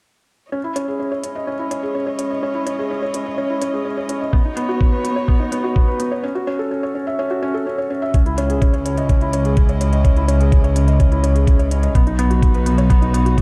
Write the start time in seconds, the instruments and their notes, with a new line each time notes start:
0.52 string quartet G#3 C#4 E4 C#5 D#5, felt piano C#4
0.64 felt piano E4
0.76 felt piano C#4, closed hi-hat
0.88 felt piano G#4
1.00 felt piano C#4
1.12 felt piano C#5
1.24 felt piano C#4, closed hi-hat
1.35 felt piano D#5
1.47 felt piano C#4
1.59 felt piano E4
1.71 felt piano C#4, closed hi-hat
1.83 felt piano G#4
1.95 felt piano C#4
2.07 felt piano C#5
2.19 felt piano C#4, closed hi-hat
2.31 felt piano D#5
2.43 felt piano C#4
2.55 felt piano E4
2.66 felt piano C#4, closed hi-hat
2.79 felt piano G#4
2.90 felt piano C#4
3.02 felt piano C#5
3.14 felt piano C#4, closed hi-hat
3.26 felt piano D#5
3.38 felt piano C#4
3.50 felt piano E4
3.62 felt piano C#4, closed hi-hat
3.74 felt piano G#4
3.85 felt piano C#4
3.97 felt piano C#5
4.09 felt piano C#4, closed hi-hat
4.21 felt piano D#5
4.33 felt piano B3, string quartet B3 F#4 C#5, kick
4.45 felt piano D#4
4.57 felt piano B3, closed hi-hat
4.69 felt piano F#4
4.80 felt piano B3, kick
4.92 felt piano B4
5.04 felt piano B3, closed hi-hat
5.16 felt piano C#5
5.28 felt piano B3, kick
5.40 felt piano D#4
5.52 felt piano B3, closed hi-hat
5.64 felt piano F#4
5.76 felt piano B3, kick
5.88 felt piano B4
6.00 felt piano B3, closed hi-hat
6.12 felt piano C#5
6.23 felt piano C#4
6.35 felt piano F#4
6.47 felt piano C#4
6.59 felt piano A4
6.71 felt piano C#4
6.83 felt piano C#5
6.95 felt piano C#4
7.07 felt piano E5
7.19 felt piano C#4
7.31 felt piano F#4
7.42 felt piano C#4
7.54 felt piano A4
7.66 felt piano C#4
7.78 felt piano C#5
7.90 felt piano C#4
8.02 felt piano E5
8.13 double bass section C#2, string quartet C#3 E3 G#3 E4 D#5, felt piano C#4, kick, closed hi-hat
8.26 felt piano E4, closed hi-hat
8.38 felt piano C#4, closed hi-hat
8.50 felt piano G#4, closed hi-hat
8.62 felt piano C#4, kick, closed hi-hat
8.74 felt piano C#5, closed hi-hat
8.86 felt piano C#4, closed hi-hat
8.97 felt piano D#5, closed hi-hat
9.09 felt piano C#4, kick, closed hi-hat
9.21 felt piano E4, closed hi-hat
9.33 felt piano C#4, closed hi-hat
9.45 felt piano G#4, closed hi-hat
9.57 felt piano C#4, kick, closed hi-hat
9.69 felt piano C#5, closed hi-hat
9.81 felt piano C#4, closed hi-hat
9.93 felt piano D#5, closed hi-hat
10.04 felt piano C#4, kick, closed hi-hat
10.16 felt piano E4, closed hi-hat
10.28 felt piano C#4, closed hi-hat
10.40 felt piano G#4, closed hi-hat
10.52 felt piano C#4, kick, closed hi-hat
10.64 felt piano C#5, closed hi-hat
10.76 felt piano C#4, closed hi-hat
10.88 felt piano D#5, closed hi-hat
11.00 felt piano C#4, kick, closed hi-hat
11.12 felt piano E4, closed hi-hat
11.23 felt piano C#4, closed hi-hat
11.35 felt piano G#4, closed hi-hat
11.47 felt piano C#4, kick, closed hi-hat
11.59 felt piano C#5, closed hi-hat
11.71 felt piano C#4, closed hi-hat
11.83 felt piano D#5, closed hi-hat
11.95 double bass section B1, string quartet F#3 B3 D#4 F#4, felt piano B3, kick, closed hi-hat
12.07 felt piano D#4, closed hi-hat
12.19 felt piano B3, closed hi-hat
12.30 felt piano F#4, closed hi-hat
12.42 felt piano B3, kick, closed hi-hat
12.54 felt piano B4, closed hi-hat
12.66 felt piano B3, closed hi-hat
12.78 felt piano C#5, closed hi-hat
12.90 felt piano B3, kick, closed hi-hat
13.02 felt piano D#4, closed hi-hat
13.14 felt piano B3, closed hi-hat
13.26 felt piano F#4, closed hi-hat
13.38 felt piano B3, kick, closed hi-hat